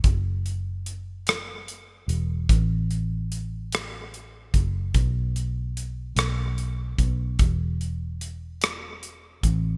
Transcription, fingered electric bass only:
0.04 2.05 F#1 medium
2.08 2.47 E1 medium
2.49 4.50 A1 medium
4.54 4.92 F#1 medium
4.94 6.13 B1 medium
6.16 6.94 B1 medium
6.98 7.37 B1 medium
7.39 9.39 E1 medium
9.43 9.77 A1 medium

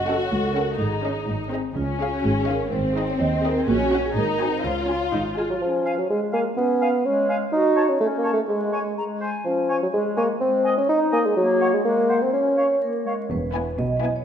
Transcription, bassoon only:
5.37 5.42 G#3 soft
5.50 5.55 F#3 soft
5.61 5.99 F3 soft
5.98 6.09 F#3 soft
6.10 6.20 G#3 medium
6.33 6.44 A#3 medium
6.57 7.07 B3 medium
7.05 7.29 C#4 medium
7.52 7.90 D#4 medium
7.89 8.00 C#4 soft
8.00 8.07 A3 medium
8.18 8.32 A#3 medium
8.33 8.40 A3 medium
8.48 8.96 G#3 medium
9.45 9.79 F3 medium
9.83 9.88 F#3 soft
9.93 10.04 G#3 medium
10.17 10.28 A#3 medium
10.40 10.76 C4 medium
10.78 10.88 C#4 medium
10.89 11.00 D#4 medium
11.13 11.27 A#3 medium
11.26 11.36 G#3 medium
11.37 11.75 F#3 medium
11.74 11.84 G#3 medium
11.85 12.23 A#3 medium
12.22 12.32 C4 medium
12.33 12.81 C#4 medium

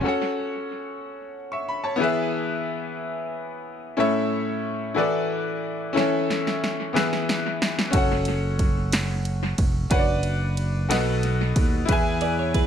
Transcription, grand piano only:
0.01 1.96 C#4 medium
0.01 1.97 F#4 medium
0.01 1.98 A4 medium
0.06 1.34 C#5 medium
0.06 1.35 F#5 medium
1.52 1.68 E5 medium
1.52 1.67 C#6 medium
1.69 1.84 B5 medium
1.84 2.16 C#5 medium
1.84 2.15 A5 medium
1.96 2.95 E3 medium
1.96 3.92 B3 medium
1.96 3.93 E4 medium
1.96 3.94 G#4 medium
2.02 3.95 B4 medium
2.02 3.96 E5 loud
3.97 4.93 A2 medium
3.97 4.97 C#4 medium
3.97 4.93 E4 medium
3.97 4.95 A4 medium
3.97 4.98 C#5 medium
3.97 4.98 E5 medium
4.94 5.92 E3 medium
4.94 5.93 E4 medium
4.94 5.95 F#4 medium
4.94 5.94 A4 medium
4.94 5.96 B4 medium
4.94 5.97 D5 medium
5.93 6.91 E3 medium
5.93 6.93 C#4 medium
5.93 6.93 E4 medium
5.93 6.95 A4 medium
5.93 6.95 C#5 medium
5.97 6.95 E5 medium
6.93 7.89 E3 medium
6.93 7.93 B3 medium
6.93 7.93 E4 medium
6.93 7.93 G#4 medium
6.93 7.94 B4 medium
6.93 7.95 E5 medium
7.90 9.86 C#4 medium
7.90 9.87 F#4 medium
7.90 9.88 A4 medium
7.95 9.88 C#5 medium
7.95 9.90 F#5 medium
9.90 10.90 D4 medium
9.90 10.87 F#4 medium
9.90 10.89 B4 medium
9.90 9.98 C#5 medium
9.90 10.90 F#5 loud
9.99 10.94 D5 medium
10.89 11.85 B2 medium
10.89 11.88 F#4 medium
10.89 11.89 A4 medium
10.89 11.87 B4 medium
10.89 11.89 D#5 medium
10.89 11.90 F#5 medium
11.85 12.67 E3 medium
11.85 12.67 E4 medium
11.85 12.67 G#4 medium
11.85 12.67 B4 medium
11.91 12.67 E5 medium
11.91 12.67 G#5 loud

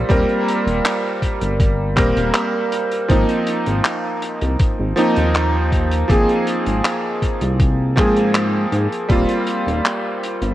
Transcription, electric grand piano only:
0.00 0.09 G3 loud
0.00 0.10 A#3 medium
0.00 0.11 C4 medium
0.00 3.12 F4 loud
0.09 1.92 G3 medium
0.09 1.93 A#3 medium
0.09 1.94 C4 medium
0.09 1.94 A#4 loud
1.96 3.05 G3 medium
1.96 3.05 A#3 medium
1.96 3.06 C4 medium
1.96 3.06 A#4 medium
3.08 4.92 F3 medium
3.08 4.93 A#3 medium
3.08 4.93 C4 medium
3.08 4.94 D#4 loud
4.96 6.05 F3 loud
4.96 6.05 A#3 medium
4.96 6.06 C4 medium
4.96 6.06 D#4 loud
6.08 7.92 F3 medium
6.08 7.93 A#3 medium
6.08 7.93 C4 medium
6.08 7.94 G#4 loud
7.96 9.05 F3 medium
7.96 9.05 A#3 medium
7.96 9.06 C4 medium
7.96 9.06 G#4 medium
9.09 10.54 G3 medium
9.09 10.54 A#3 medium
9.09 10.54 C4 medium
9.09 10.54 F4 loud

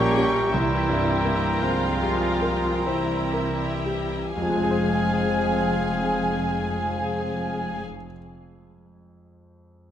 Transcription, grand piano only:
0.00 0.49 A#1 medium
0.00 0.38 A#3 soft
0.17 0.49 C#4 soft
0.17 0.49 G4 soft
0.54 4.31 C2 medium
0.89 1.47 G2 soft
1.25 1.85 A#3 soft
1.63 2.26 C4 soft
2.02 2.69 G4 soft
2.42 3.14 A#4 soft
2.86 3.64 C5 soft
3.33 4.15 A#4 soft
3.86 4.35 G4 soft
4.36 7.83 F2 soft
4.42 7.89 F3 soft
4.50 7.97 G#3 soft
4.57 8.04 C4 soft
4.63 8.11 G#4 soft
4.71 8.18 C5 soft

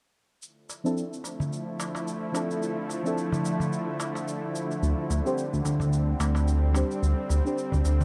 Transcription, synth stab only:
0.84 1.03 F3 medium
0.84 1.03 C4 medium
0.84 1.03 D4 medium
0.84 1.03 E4 medium
0.84 1.04 A4 medium
2.32 3.00 F3 medium
2.32 3.01 C4 medium
2.32 3.01 D4 medium
2.32 3.02 E4 medium
2.36 3.02 A4 medium
3.03 4.80 F3 medium
3.03 4.80 C4 medium
3.03 4.81 D4 medium
3.03 4.81 E4 medium
3.03 4.82 A4 medium
5.25 5.43 G3 medium
5.25 5.44 C4 medium
5.25 5.44 D4 medium
5.25 5.44 G4 medium
5.25 5.44 C5 medium
6.73 7.41 G3 medium
6.73 7.41 C4 medium
6.73 7.42 D4 medium
6.73 7.42 G4 medium
6.73 7.43 C5 medium
7.43 8.04 G3 medium
7.43 8.04 C4 medium
7.43 8.04 D4 medium
7.43 8.04 G4 medium
7.47 8.04 C5 loud

